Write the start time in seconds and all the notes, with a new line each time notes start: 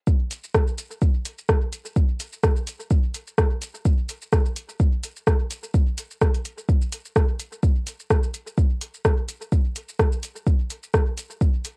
0.07 kick, shaker
0.31 closed hi-hat, shaker
0.44 shaker
0.55 kick, cross-stick, shaker
0.67 shaker
0.78 closed hi-hat, shaker
0.91 shaker
1.02 kick, shaker
1.25 closed hi-hat, shaker
1.38 shaker
1.49 kick, cross-stick, shaker
1.73 closed hi-hat, shaker
1.86 shaker
1.96 kick, shaker
2.20 closed hi-hat, shaker
2.33 shaker
2.44 kick, cross-stick, shaker
2.56 shaker
2.67 closed hi-hat, shaker
2.80 shaker
2.91 kick, shaker
3.14 closed hi-hat, shaker
3.27 shaker
3.38 kick, cross-stick, shaker
3.62 closed hi-hat, shaker
3.75 shaker
3.85 kick, shaker
4.09 closed hi-hat, shaker
4.22 shaker
4.33 kick, cross-stick, shaker
4.45 shaker
4.56 closed hi-hat, shaker
4.69 shaker
4.80 kick, shaker
5.03 closed hi-hat, shaker
5.16 shaker
5.27 kick, cross-stick, shaker
5.51 closed hi-hat, shaker
5.64 shaker
5.74 kick, shaker
5.98 closed hi-hat, shaker
6.11 shaker
6.21 kick, cross-stick, shaker
6.34 closed hi-hat, shaker
6.45 closed hi-hat, shaker
6.58 shaker
6.69 kick, shaker
6.82 shaker
6.92 closed hi-hat, shaker
7.05 shaker
7.16 kick, cross-stick, shaker
7.40 closed hi-hat, shaker
7.53 shaker
7.63 kick, shaker
7.87 closed hi-hat, shaker
8.00 shaker
8.10 kick, cross-stick, shaker
8.23 shaker
8.34 closed hi-hat, shaker
8.47 shaker
8.58 kick, shaker
8.81 closed hi-hat, shaker
8.94 shaker
9.05 kick, cross-stick, shaker
9.29 closed hi-hat, shaker
9.41 shaker
9.52 kick, shaker
9.76 closed hi-hat, shaker
9.89 shaker
9.99 kick, cross-stick, shaker
10.12 shaker
10.23 closed hi-hat, shaker
10.36 shaker
10.47 kick, shaker
10.70 closed hi-hat, shaker
10.83 shaker
10.94 kick, cross-stick, shaker
11.18 closed hi-hat, shaker
11.30 shaker
11.41 kick, shaker
11.65 closed hi-hat, shaker